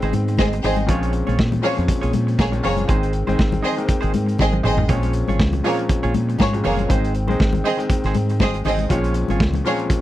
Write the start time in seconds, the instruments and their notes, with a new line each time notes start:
Already playing: grand piano D#3 G#3 B3 C4
0.02 fingered electric bass G#1, clean electric guitar D#4 G#4 C5, closed hi-hat, muted conga
0.13 fingered electric bass G#2, closed hi-hat, high conga
0.28 muted clean electric guitar stroke, closed hi-hat
0.37 fingered electric bass G#1, violin section C4 G#4 D#5, kick, snare, high conga
0.53 muted clean electric guitar stroke, closed hi-hat, muted conga
0.63 fingered electric bass G#1, violin section C4 G#4 D#5, clean electric guitar D#4 G#4 C5, open hi-hat, low conga
0.76 muted clean electric guitar stroke, closed hi-hat, high conga
0.86 fingered electric bass A#1, grand piano A#2 F3 G#3 C4 C#4, clean electric guitar F4 G#4, kick, closed hi-hat, muted conga
0.91 clean electric guitar C#5
1.03 closed hi-hat
1.13 muted clean electric guitar stroke, closed hi-hat
1.27 fingered electric bass A#1, clean electric guitar F4 G#4 C#5, closed hi-hat, high conga
1.39 fingered electric bass A#2, kick, snare, muted conga
1.52 muted clean electric guitar stroke, closed hi-hat, high conga, low conga
1.62 grand piano A#2 F3 G#3 C4 C#4, violin section A#3 G#4 C#5, clean electric guitar F4 G#4 C#5, open hi-hat
1.78 fingered electric bass F2, muted clean electric guitar stroke, closed hi-hat
1.88 muted clean electric guitar stroke, kick, closed hi-hat, muted conga
2.01 fingered electric bass A#1, clean electric guitar F4 G#4 C#5, closed hi-hat
2.13 fingered electric bass A#2, closed hi-hat, high conga
2.27 muted clean electric guitar stroke, closed hi-hat
2.38 fingered electric bass A#1, violin section A#3 G#4 C#5, kick, snare, muted conga, high conga
2.52 grand piano A#2 F3 G#3 C4 C#4, muted clean electric guitar stroke, closed hi-hat, muted conga
2.64 fingered electric bass F#1, violin section A#3 G#4 C#5, clean electric guitar F4 G#4 C#5, open hi-hat, low conga
2.77 muted clean electric guitar stroke, closed hi-hat, high conga
2.88 fingered electric bass G#1, grand piano D#3 G#3 C4, clean electric guitar D#4 G#4 C5, kick, closed hi-hat, muted conga
3.03 closed hi-hat
3.13 muted clean electric guitar stroke, closed hi-hat
3.27 fingered electric bass G#1, grand piano D#3 G#3 C4, clean electric guitar D#4 G#4 C5, closed hi-hat, high conga
3.39 fingered electric bass G#1, kick, snare, muted conga
3.52 muted clean electric guitar stroke, closed hi-hat, muted conga, high conga, low conga
3.62 violin section C4 G#4 D#5, clean electric guitar D#4 G#4 C5, open hi-hat
3.76 grand piano D#3 G#3 A#3, muted clean electric guitar stroke, closed hi-hat
3.84 grand piano C4, muted clean electric guitar stroke, closed hi-hat
3.89 kick
4.01 fingered electric bass G#1, clean electric guitar D#4 G#4 C5, closed hi-hat
4.13 fingered electric bass G#2, muted clean electric guitar stroke, closed hi-hat, high conga
4.26 muted clean electric guitar stroke, closed hi-hat
4.39 fingered electric bass G#1, violin section C4 G#4 D#5, kick, snare, high conga
4.52 muted clean electric guitar stroke, high tom, muted conga
4.63 fingered electric bass G#1, violin section C4 G#4 D#5, clean electric guitar D#4 G#4 C5, mid tom, low conga
4.77 muted clean electric guitar stroke, floor tom, high conga, low conga
4.88 fingered electric bass A#1, grand piano A#2 F3 G#3 C4 C#4, clean electric guitar F4 G#4 C#5, kick, closed hi-hat
5.03 closed hi-hat, muted conga
5.13 muted clean electric guitar stroke, closed hi-hat
5.28 fingered electric bass G#1, clean electric guitar F4 G#4 C#5, closed hi-hat, high conga
5.40 fingered electric bass C#2, kick, snare
5.53 muted clean electric guitar stroke, closed hi-hat, high conga, low conga
5.64 grand piano A#2 F3 G#3 C4 C#4, violin section A#3 G#4 C#5, clean electric guitar F4 G#4 C#5, open hi-hat
5.79 muted clean electric guitar stroke, closed hi-hat
5.89 muted clean electric guitar stroke, kick, closed hi-hat, muted conga
6.03 fingered electric bass A#1, clean electric guitar F4 G#4 C#5, closed hi-hat
6.14 fingered electric bass A#2, muted clean electric guitar stroke, closed hi-hat, high conga
6.29 muted clean electric guitar stroke, closed hi-hat
6.39 fingered electric bass G#2, violin section A#3 G#4 C#5, kick, snare, muted conga, high conga
6.53 grand piano A#2 F3 G#3 C4 C#4, muted clean electric guitar stroke, closed hi-hat
6.64 fingered electric bass F#1, violin section A#3 G#4 C#5, clean electric guitar F4 G#4 C#5, open hi-hat, low conga
6.77 muted clean electric guitar stroke, closed hi-hat, high conga
6.89 fingered electric bass G#1, grand piano D#3 G#3 C4, clean electric guitar D#4 G#4 C5, kick, closed hi-hat
7.04 closed hi-hat
7.14 closed hi-hat
7.27 fingered electric bass A#1, grand piano D#3 G#3 C4, clean electric guitar D#4 G#4 C5, closed hi-hat, high conga
7.39 fingered electric bass G#1, kick, snare, muted conga
7.53 muted clean electric guitar stroke, closed hi-hat, high conga, low conga
7.64 violin section C4 G#4 D#5, clean electric guitar D#4 G#4 C5, open hi-hat
7.77 grand piano D#3 G#3 C4, muted clean electric guitar stroke, closed hi-hat
7.90 muted clean electric guitar stroke, kick, closed hi-hat, muted conga
8.04 fingered electric bass G#1, clean electric guitar D#4 G#4 C5, snare, closed hi-hat
8.14 fingered electric bass G#2, muted clean electric guitar stroke, closed hi-hat, high conga
8.29 muted clean electric guitar stroke, closed hi-hat
8.40 fingered electric bass G#1, violin section C4 G#4 D#5, kick, snare, high conga
8.54 muted clean electric guitar stroke, closed hi-hat, muted conga
8.65 fingered electric bass G#1, violin section C4 G#4 D#5, clean electric guitar D#4 G#4 C5, open hi-hat, low conga
8.78 muted clean electric guitar stroke, closed hi-hat, high conga
8.89 fingered electric bass A#1, grand piano A#2 F3 G#3 C4 C#4, clean electric guitar F4 G#4 C#5, kick, closed hi-hat
9.04 closed hi-hat
9.14 closed hi-hat
9.28 fingered electric bass G#1, clean electric guitar F4 G#4 C#5, closed hi-hat, high conga
9.40 fingered electric bass C#2, kick, snare
9.54 muted clean electric guitar stroke, closed hi-hat, muted conga, high conga, low conga
9.65 grand piano A#2 F3 G#3 C4 C#4, violin section A#3 G#4 C#5, clean electric guitar F4 G#4 C#5, open hi-hat
9.79 muted clean electric guitar stroke, closed hi-hat
9.90 muted clean electric guitar stroke, kick, closed hi-hat